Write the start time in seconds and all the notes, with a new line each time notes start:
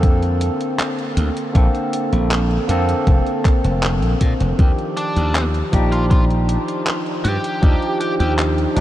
Already playing: F2 D3 A#3 C4 A4
0.03 kick, closed hi-hat
0.23 closed hi-hat
0.41 closed hi-hat
0.61 closed hi-hat
0.79 clap, closed hi-hat
0.99 closed hi-hat
1.17 D2, closed hi-hat
1.37 closed hi-hat
1.53 A#1 D3 A#3 C4 A4, kick, closed hi-hat
1.75 closed hi-hat
1.93 closed hi-hat
2.12 A#1, closed hi-hat
2.31 clap, closed hi-hat
2.51 closed hi-hat
2.68 F2 D3 A#3 C4 A4, closed hi-hat
2.89 closed hi-hat
3.07 F1, kick, closed hi-hat
3.26 closed hi-hat
3.45 kick, clap, closed hi-hat
3.64 F1, closed hi-hat
3.83 clap, closed hi-hat
4.02 A#1, closed hi-hat
4.21 A#2, kick, closed hi-hat
4.40 F1, closed hi-hat
4.58 D#2 D#3 F3 D4 G4, kick, closed hi-hat
4.79 closed hi-hat
4.97 D4, closed hi-hat
5.16 D#2, closed hi-hat
5.35 clap, closed hi-hat
5.54 closed hi-hat
5.71 A#1 F3 D4 D#4 G4, kick, closed hi-hat
5.92 F4, closed hi-hat
6.11 F4, kick, closed hi-hat
6.30 closed hi-hat
6.49 closed hi-hat
6.68 closed hi-hat
6.87 clap, closed hi-hat
7.06 closed hi-hat
7.24 G2 G4, closed hi-hat
7.44 closed hi-hat
7.61 D#2 F3 D4 D#4 G4, kick, closed hi-hat
7.82 closed hi-hat
8.00 G4, closed hi-hat
8.20 D#2 G4, closed hi-hat
8.39 clap, closed hi-hat
8.58 closed hi-hat
8.75 A#1 F3 D4 D#4, closed hi-hat